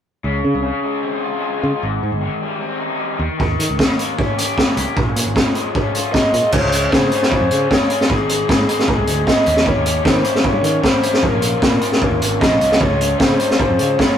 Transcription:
0.24 C#2 C#3
0.44 C#3
0.55 C2
0.63 C#3
0.83 G#3
1.03 C4
1.23 F4
1.42 G#3
1.62 C#3 F4
1.82 G#1 G#2
2.03 G#2
2.12 G1
2.21 D#3
2.41 G3
2.60 C4
2.80 D#4
3.00 G3
3.19 D#2 D#3
3.39 D#2 D#3, kick
3.59 D#3, closed hi-hat
3.69 C#2
3.78 D#3, kick, snare
3.98 A#3, closed hi-hat
4.17 C#4, kick
4.37 G4, closed hi-hat
4.58 A#3, kick, snare
4.77 C2 G4, closed hi-hat
4.96 A#1 A#2, kick
5.16 A#2, closed hi-hat
5.27 G#1
5.36 F3, kick, snare
5.55 G#3, closed hi-hat
5.75 C#4, kick
5.95 F4, closed hi-hat
6.13 G#3 D#5, kick, snare
6.34 A#2 F4, closed hi-hat
6.52 C#2 C#3 G#3 C#4 F4 G#4 C#5, kick, crash
6.63 C#2
6.72 C#4 F4 G#4, closed hi-hat
6.92 C#3 G#3 C#4 F4 G#4 C5, kick, snare
7.11 C#4 F4 G#4, closed hi-hat
7.22 snare
7.32 C5, kick
7.41 F2
7.51 C#3, closed hi-hat
7.69 G#3 C#4 F4 G#4 C#5, kick, snare
7.89 C#4 F4 G#4, closed hi-hat
8.01 snare
8.09 G#1 G#2 D#3 G#3 C4 D#4 G#4, kick
8.20 G#1
8.29 G#3 C4 D#4 G#4, closed hi-hat
8.48 G#2 D#3 G#3 C4 D#4 G#4, kick, snare
8.67 G#3 C4 D#4 G#4, closed hi-hat
8.79 snare
8.88 kick
8.98 C2
9.07 D2, closed hi-hat
9.26 G#3 C4 D#4 G#4 D#5, kick, snare
9.46 D#2 D#3 A#3 C#4 G4, closed hi-hat
9.56 snare
9.65 D#3 A#3 C#4 G4 C#5, kick
9.77 D#2
9.85 A#3 C#4 G4, closed hi-hat
10.04 D#3 A#3 C#4 G4 C5, kick, snare
10.24 A#3 C#4 G4, closed hi-hat
10.35 snare
10.44 C#5, kick
10.53 G2
10.63 D#3, closed hi-hat
10.82 D#3 A#3 C#4 G4 C5, kick, snare
11.02 A#3 C#4 G4, closed hi-hat
11.13 snare
11.21 A#1 A#2 F3 A#3 C#4 F4 A#4, kick
11.32 A#1
11.41 A#3 C#4 F4, closed hi-hat
11.61 A#2 F3 A#3 C#4 F4, kick, snare
11.81 A#3 C#4 F4, closed hi-hat
11.92 snare
12.02 kick
12.11 D#2
12.21 G#1, closed hi-hat
12.40 A#1 F3 A#3 C#4 F4 D#5, kick, snare
12.60 C2 A#3 C#4 F4, closed hi-hat
12.72 snare
12.80 C#2 C#3 G#3 C#4 F4 C#5, kick
12.90 C#2
13.00 G#3 C#4 F4, closed hi-hat
13.19 C#3 G#3 C#4 F4 C5, kick, snare
13.39 G#3 C#4 F4, closed hi-hat
13.50 snare
13.59 C5, kick
13.70 F2
13.79 C#3, closed hi-hat
13.98 C#3 G#3 C#4 F4 C#5, kick, snare

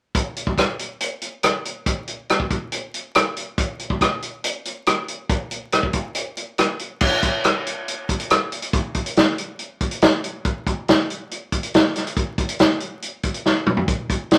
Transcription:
0.15 kick, closed hi-hat
0.36 closed hi-hat
0.47 kick
0.58 kick, cross-stick, closed hi-hat
0.79 closed hi-hat
1.00 closed hi-hat
1.22 closed hi-hat
1.43 cross-stick, closed hi-hat
1.65 closed hi-hat
1.86 kick, closed hi-hat
2.07 closed hi-hat
2.29 cross-stick, closed hi-hat
2.40 kick
2.50 kick, closed hi-hat
2.72 closed hi-hat
2.94 closed hi-hat
3.15 cross-stick, closed hi-hat
3.37 closed hi-hat
3.58 kick, closed hi-hat
3.79 closed hi-hat
3.90 kick
4.01 kick, cross-stick, closed hi-hat
4.22 closed hi-hat
4.44 closed hi-hat
4.65 closed hi-hat
4.86 cross-stick, closed hi-hat
5.08 closed hi-hat
5.29 kick, closed hi-hat
5.51 closed hi-hat
5.72 cross-stick, closed hi-hat
5.83 kick
5.93 kick, closed hi-hat
6.15 closed hi-hat
6.37 closed hi-hat
6.58 cross-stick, closed hi-hat
6.79 closed hi-hat
7.01 kick, crash
7.22 kick, closed hi-hat
7.44 cross-stick, closed hi-hat
7.66 closed hi-hat
7.88 closed hi-hat
8.09 kick, closed hi-hat
8.20 closed hi-hat
8.30 cross-stick, closed hi-hat
8.52 closed hi-hat
8.62 closed hi-hat
8.73 kick, closed hi-hat
8.94 kick, closed hi-hat
9.06 closed hi-hat
9.16 snare, closed hi-hat
9.38 closed hi-hat
9.59 closed hi-hat
9.81 kick, closed hi-hat
9.91 closed hi-hat
10.02 snare, closed hi-hat
10.24 closed hi-hat
10.45 kick, closed hi-hat
10.66 kick, closed hi-hat
10.88 snare, closed hi-hat
11.10 closed hi-hat
11.31 closed hi-hat
11.52 kick, closed hi-hat
11.63 closed hi-hat
11.74 snare, closed hi-hat
11.96 snare, closed hi-hat
12.07 closed hi-hat
12.17 kick, closed hi-hat
12.38 kick, closed hi-hat
12.49 closed hi-hat
12.59 snare, closed hi-hat
12.80 closed hi-hat
13.02 closed hi-hat
13.23 kick, closed hi-hat
13.34 closed hi-hat
13.46 snare
13.67 mid tom
13.77 floor tom
13.88 kick, closed hi-hat
14.10 kick, closed hi-hat
14.31 snare, closed hi-hat

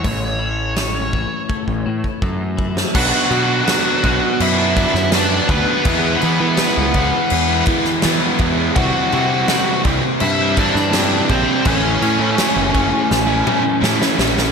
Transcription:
Already playing: C#5
0.04 A1 A2, kick, open hi-hat
0.39 E4
0.76 C#4, snare, open hi-hat
1.13 E3, kick
1.49 A3, kick
1.68 A1, kick
1.86 A2 E3
2.04 kick
2.22 F#2 A3, kick
2.57 E4, kick
2.77 snare
2.94 B1 B2 F#3 B3 D4 F#4 F#5, kick, crash
3.30 B2 F#3 B3 D4, crash
3.46 F#3 B3 D4
3.65 B2 F#3 B3 D4, snare, crash
4.03 B1 B2 F#3 B3 D4, kick, crash
4.22 muted distorted electric guitar stroke
4.40 F#2 E4 E5, crash
4.58 F#3 B3 D4
4.76 B2 F#3 B3 D4, kick, crash
4.94 F#2, muted distorted electric guitar stroke, snare
5.11 B2 F#3 B3 D4, snare, crash
5.15 D4 D5
5.48 D2 B2 F#3 B3 D4 B4, kick, crash
5.66 F#3 B3 D4
5.85 E2 E3 G#3 B3 E4, kick, crash
6.21 E3 G#3 B3 E4, crash
6.39 E3 G#3 B3 E4
6.57 E3 G#3 B3 E4, snare, crash
6.77 C#2
6.93 C#2 E3 G#3 B3 E4, kick, crash
7.12 muted distorted electric guitar stroke
7.30 E2, crash
7.47 G#3 B3 E4
7.66 E4, kick, crash
7.70 E3 G#3 B3
7.85 muted distorted electric guitar stroke, snare
8.02 E3 G#3 B3, snare, crash
8.06 E4
8.39 E2 E3 G#3 B3 E4, kick, crash
8.57 G#3 B3 E4
8.76 C2 C3 E3 G3 C4 E4 F#4 F#5, kick, crash
9.12 C3 E3 G3 C4 E4, crash
9.30 G3 C4 E4
9.48 C3 E3 G3 C4 E4, snare, crash
9.84 C2 E3 G3 C4 E4, kick, crash
10.05 muted distorted electric guitar stroke
10.20 G2 E4 E5, crash
10.39 G3 C4 E4
10.57 G3 C4 D4 E4 D5, kick, crash
10.61 C3 E3
10.75 G2, muted distorted electric guitar stroke, snare
10.92 C3 E3 G3 C4 E4, snare, crash
11.29 A#1 E3 G3 C4 E4 C5, kick, crash
11.46 G3 C4 E4
11.65 A1 A2 E3 A3 C#4 E4 C#5, kick, crash
12.00 A2 E3 A3 C#4 E4, crash
12.19 A2 A3 C#4 E4
12.36 A2 E3 A3 C#4 E4, snare, crash
12.56 F#1
12.74 F#1 E3 A3 C#4 E4, kick, crash
12.92 muted distorted electric guitar stroke
13.05 B4
13.11 A1, snare
13.27 A3 C#4 E4
13.47 A2 E3 A3 C#4 E4, mid tom
13.64 muted distorted electric guitar stroke
13.80 A2 E3 A3 C#4 E4, snare
14.02 snare
14.17 A#1 E3 A3 C#4 E4, snare
14.36 A3 C#4 E4, snare

